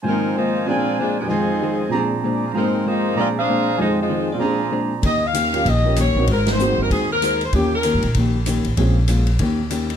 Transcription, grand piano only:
0.03 G#2 D#3 F3 A#3
0.07 C4
0.66 A#2 F3 G#3 C4 D4
1.23 F2 F3
1.28 G#3 D#4
1.33 G5
1.61 G#4
1.76 C5
1.89 A#2 F3 C4 D4
1.94 G#4
2.53 G#2 F3 A#3 C4
2.58 G#4
3.14 A#2 F3 C4 D4
3.19 G#4
3.78 F2 F3 G#3 D#4 G5
4.35 A#2 F3
4.40 C4 D4
4.46 G#4
5.53 A#3 C#4 F4 G4
5.84 A#3 C#4 F4 G4
6.17 A#3 C4 D#4 F#4
6.59 A#3 C4 D#4 F#4
7.53 A#3 C#4 F4 G4
8.78 C4 C#4 F4 G#4

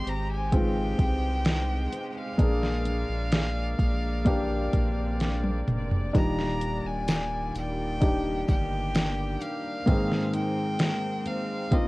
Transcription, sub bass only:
0.06 G#1
0.99 C2
2.39 A#1
3.09 A#1
3.79 A#1
4.73 A#1
5.68 F1
6.14 D#1
6.85 D#1
7.55 D#1
8.48 G1

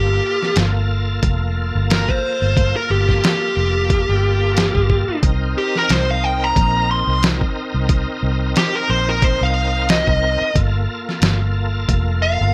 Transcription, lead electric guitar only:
Already playing: G4
1.92 A#4
2.11 C5
2.76 A#4
2.91 G4
3.26 G4
5.58 G4
5.77 A#4
5.92 C5
6.11 F5
6.24 G5
6.44 A#5
6.91 C6
8.58 G4
8.75 A#4
8.90 C5
9.10 A#4
9.24 C5
9.43 F5
9.90 D#5
12.22 F5

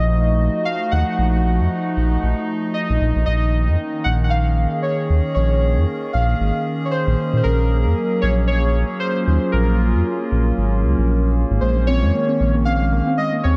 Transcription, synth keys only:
Already playing: D#5
0.65 F5
0.91 F#5
2.74 D#5
3.26 D#5
4.04 F#5
4.24 F#5
4.30 F5
4.82 C#5
5.35 C#5
6.13 F5
6.85 C#5
6.91 C5
7.37 C5
7.43 A#4
8.21 C#5
8.48 C#5
9.00 C5
9.52 A#4
11.61 C5
11.87 C#5
12.65 F5
13.18 D#5
13.44 C#5

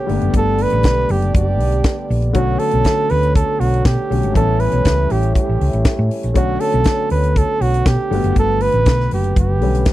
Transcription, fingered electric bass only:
0.09 G1
0.22 F#1
0.33 G1
0.73 A1
0.84 B1
1.10 F#1
1.35 F#1
1.60 B1
2.10 A#1
2.35 B1
2.73 B1
3.11 D2
3.60 B1
3.86 B2
4.11 B1
4.24 G#1
4.36 A1
4.73 B1
4.85 C#2
5.11 A1
5.49 A1
5.61 C#2
5.74 A1
5.99 A2
6.24 A#1
6.36 B1
6.74 B1
7.11 D2
7.61 B1
7.86 B2
8.11 G1
8.24 F#1
8.36 G1
8.74 A1
8.87 B1
9.13 F#1
9.37 F#1
9.62 B1

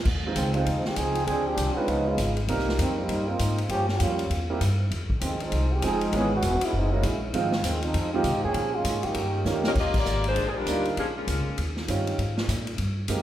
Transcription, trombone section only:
0.35 D#3 F3 G#3 C4
0.54 F3 G#3 C4 D#4
0.85 D#3 G#3 C4 G4
0.97 F3 C4 D#4 G#4
1.27 F3 C4 D4 G#4
1.45 F3 C4 D4 G4
1.76 G#3 C4 D4 F4
1.88 F3 G#3 B3 D#4
2.07 G#3 B3 D#4 F4
2.80 D#3 G3 A#3 C4
2.99 G3 A#3 C4 D#4
3.28 A#3 C4 D#4 F4
3.70 F3 A#3 C#4 G4
3.90 F3 A#3 C#4 G4
3.99 G3 A#3 C#4 F4
5.21 D#3 F3 G#3 C4
5.42 F3 G#3 C4 D#4
5.72 D#3 G#3 C4 G4
5.85 F3 C4 D#4 G#4
6.16 E3 B3 C#4 G#4
6.35 E3 B3 C#4 F#4
6.63 G#3 B3 C#4 E4
6.76 E3 G#3 C4 D#4
6.93 G#3 A#3 C#4 E4
7.63 D#3 F3 G#3 C4
7.83 F3 G#3 C4 D#4
8.13 F3 C4 D#4 G4
8.44 F3 A#3 C#4 G#4
8.75 G#3 A#3 C#4 F4
9.04 D#3 A#3 C#4 G4

